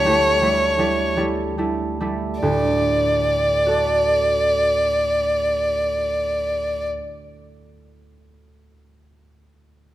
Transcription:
0.00 2.41 D2 soft
0.00 1.18 C#5 soft
0.06 0.40 G3 soft
0.06 0.41 A3 soft
0.06 0.42 E4 soft
0.42 0.77 G3 soft
0.42 0.78 A3 soft
0.42 0.78 E4 soft
0.78 1.16 G3 soft
0.78 1.16 A3 soft
0.78 1.16 E4 soft
1.17 1.57 G3 soft
1.17 1.57 A3 soft
1.17 1.58 E4 soft
1.58 2.00 G3 soft
1.58 2.00 A3 soft
1.58 2.01 E4 soft
2.01 2.48 G3 soft
2.01 5.91 A3 soft
2.01 2.48 E4 soft
2.41 6.97 D2 soft
2.41 6.97 A2 soft
2.41 6.86 D5 soft
3.66 7.58 F#4 soft
3.66 7.59 A4 soft
3.66 7.60 D5 soft

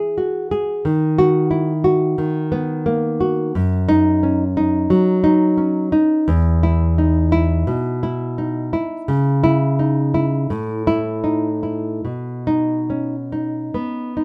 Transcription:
0.00 0.52 E4 medium
0.00 0.50 G#4 medium
0.18 0.85 F#4 medium
0.51 0.85 G#4 medium
0.85 2.15 D#3 medium
1.18 1.72 F#4 medium
1.51 2.51 E4 medium
1.84 2.87 F#4 medium
2.18 3.52 D#3 medium
2.52 3.55 B3 medium
2.86 3.55 A#3 medium
3.21 3.55 F#4 medium
3.55 4.86 F#2 medium
3.89 4.44 D#4 loud
4.23 5.23 C#4 medium
4.57 5.23 D#4 medium
4.90 5.92 F#3 medium
5.24 5.91 D#4 medium
5.57 6.28 C#4 medium
5.92 6.28 D#4 medium
6.28 7.63 E2 medium
6.63 7.19 E4 medium
6.98 8.03 D#4 medium
7.32 8.02 E4 medium
7.67 8.73 B2 medium
8.03 8.72 E4 medium
8.38 9.09 D#4 medium
8.73 9.09 E4 medium
9.08 10.46 C#3 medium
9.44 10.00 E4 medium
9.79 10.50 D#4 medium
10.14 10.50 E4 medium
10.50 12.00 A2 medium
10.87 11.48 E4 medium
11.24 12.04 D#4 medium
11.63 12.04 E4 medium
12.05 13.70 B2 medium
12.47 13.15 D#4 medium
12.90 14.17 C#4 soft
13.32 14.16 D#4 medium
13.74 14.24 B3 medium
14.17 14.24 D#4 medium

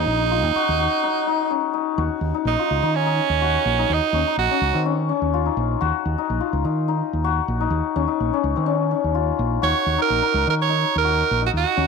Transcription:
0.00 1.50 C#4 medium
0.00 1.03 D#4 medium
0.00 1.52 D#4 medium
0.00 0.31 F4 medium
0.06 0.43 A#1 loud
0.31 0.62 F4 medium
0.43 0.52 D#2 loud
0.56 0.79 F#4 medium
0.69 0.87 D#2 loud
0.79 1.97 F#4 medium
1.03 1.27 D#4 medium
1.27 1.73 D#4 medium
1.50 4.14 C#4 medium
1.73 2.34 D#4 medium
1.98 2.08 D#2 loud
1.98 2.65 F#4 medium
2.21 2.31 D#2 medium
2.34 2.83 D#4 medium
2.45 2.55 A#1 medium
2.45 2.97 D#4 medium
2.59 3.48 F4 medium
2.71 2.80 C#2 medium
2.83 3.19 D#3 medium
2.83 3.06 D#4 medium
2.95 3.95 C#4 medium
3.06 3.78 D#4 medium
3.30 3.56 D#2 medium
3.42 5.40 F#4 medium
3.65 3.84 A#1 loud
3.79 4.27 D#4 medium
3.90 3.99 D#2 medium
3.90 4.38 D#4 loud
4.13 4.23 D#2 medium
4.13 4.51 C#4 medium
4.27 5.46 D#4 medium
4.37 4.47 A#1 medium
4.37 4.82 F#4 loud
4.51 4.80 C#4 medium
4.61 4.71 C#2 medium
4.74 5.10 D#3 medium
4.74 4.92 C4 medium
4.86 5.09 C#4 medium
5.09 7.95 C#4 medium
5.22 5.48 D#2 medium
5.34 5.87 F4 medium
5.46 6.18 D#4 medium
5.57 5.75 A#1 medium
5.81 5.91 D#2 loud
5.81 6.46 F#4 loud
6.06 6.15 D#2 medium
6.18 6.65 D#4 medium
6.30 6.39 A#1 medium
6.40 7.30 F4 medium
6.53 6.62 C#2 medium
6.64 7.01 D#3 medium
6.64 6.88 D#4 medium
6.88 7.60 D#4 medium
7.13 7.39 D#2 medium
7.24 9.21 F#4 medium
7.48 7.66 A#1 medium
7.61 8.07 D#4 medium
7.70 7.81 D#2 loud
7.96 8.05 D#2 medium
7.96 8.33 C#4 medium
8.08 9.98 D#4 medium
8.20 8.30 A#1 medium
8.33 8.62 C#4 medium
8.44 8.53 C#2 medium
8.56 8.93 D#3 medium
8.56 8.72 C4 medium
8.66 8.91 C#4 medium
8.91 11.76 C#4 medium
9.04 9.31 D#2 medium
9.15 9.68 F4 medium
9.39 9.57 A#1 loud
9.62 9.72 D#2 loud
9.62 11.04 F#4 loud
9.62 9.97 C#5 loud
9.86 9.96 D#2 medium
9.98 10.22 D#4 medium
9.98 10.45 A#4 loud
10.10 10.20 A#1 medium
10.22 10.46 D#4 medium
10.34 10.44 C#2 medium
10.46 10.84 D#3 medium
10.46 10.68 D#4 medium
10.50 10.55 A#4 medium
10.62 10.94 C#5 loud
10.69 11.41 D#4 medium
10.96 11.22 D#2 medium
10.96 11.41 A#4 loud
11.05 11.87 F#4 medium
11.31 11.49 A#1 medium
11.41 11.87 D#4 medium
11.46 11.51 F#4 medium
11.53 11.63 D#2 medium
11.53 11.87 F#4 medium
11.77 11.87 D#2 medium
11.77 11.87 C#4 medium

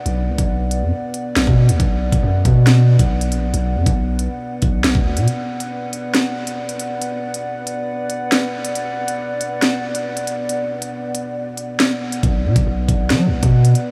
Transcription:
0.00 8.71 B3 medium
0.00 1.76 B4 medium
0.00 5.24 D5 medium
0.00 1.76 F#5 medium
0.06 0.29 B1 loud
0.06 closed hi-hat medium
0.28 0.38 C#2 loud
0.38 0.84 B1 loud
0.38 kick loud
0.38 closed hi-hat medium
0.71 closed hi-hat medium
0.82 0.92 F#2 loud
1.14 closed hi-hat medium
1.36 1.47 B1 loud
1.36 snare loud
1.36 closed hi-hat medium
1.47 1.70 B2 loud
1.47 kick loud
1.69 1.79 D2 loud
1.69 closed hi-hat medium
1.80 2.11 B1 loud
1.80 12.19 B4 medium
1.80 12.19 F#5 medium
1.80 kick loud
1.80 closed hi-hat medium
2.12 2.23 B1 loud
2.12 kick loud
2.12 closed hi-hat medium
2.23 2.44 F#2 loud
2.45 2.97 B2 loud
2.45 kick loud
2.45 closed hi-hat medium
2.67 snare loud
2.67 closed hi-hat medium
2.99 3.34 B1 loud
2.99 kick medium
2.99 closed hi-hat medium
3.21 closed hi-hat medium
3.32 3.44 A#1 loud
3.32 closed hi-hat medium
3.43 3.53 B1 loud
3.54 3.77 B1 loud
3.54 closed hi-hat medium
3.75 3.86 F#2 loud
3.86 4.28 B1 loud
3.86 kick loud
3.86 closed hi-hat medium
4.19 closed hi-hat medium
4.62 4.83 B1 loud
4.62 kick medium
4.62 closed hi-hat medium
4.84 4.94 B1 loud
4.84 snare loud
4.84 closed hi-hat medium
4.95 5.18 D2 loud
4.95 kick loud
5.17 5.27 B2 loud
5.17 closed hi-hat medium
5.28 13.91 D5 medium
5.28 closed hi-hat medium
5.60 closed hi-hat medium
5.93 closed hi-hat medium
6.14 snare loud
6.14 closed hi-hat medium
6.47 closed hi-hat medium
6.69 closed hi-hat medium
6.79 closed hi-hat medium
7.02 closed hi-hat medium
7.34 closed hi-hat medium
7.67 closed hi-hat medium
8.10 closed hi-hat medium
8.32 snare loud
8.32 closed hi-hat medium
8.65 closed hi-hat medium
8.75 13.91 B3 medium
8.75 closed hi-hat medium
9.08 closed hi-hat medium
9.41 closed hi-hat medium
9.62 snare loud
9.62 closed hi-hat medium
9.95 closed hi-hat medium
10.17 closed hi-hat medium
10.27 closed hi-hat medium
10.49 closed hi-hat medium
10.82 closed hi-hat medium
11.15 closed hi-hat medium
11.57 closed hi-hat medium
11.80 snare loud
11.80 closed hi-hat medium
12.12 closed hi-hat medium
12.23 12.47 B1 loud
12.23 13.91 B4 medium
12.23 13.91 F#5 medium
12.23 kick loud
12.23 closed hi-hat medium
12.45 12.55 B2 loud
12.56 12.66 B1 loud
12.56 kick loud
12.56 closed hi-hat medium
12.67 12.88 B1 loud
12.89 13.12 B1 loud
12.89 kick medium
12.89 closed hi-hat medium
13.10 13.28 F#3 loud
13.10 snare loud
13.10 closed hi-hat medium
13.27 13.42 B1 loud
13.43 13.74 B2 loud
13.43 kick loud
13.43 closed hi-hat medium
13.65 closed hi-hat medium
13.75 closed hi-hat medium

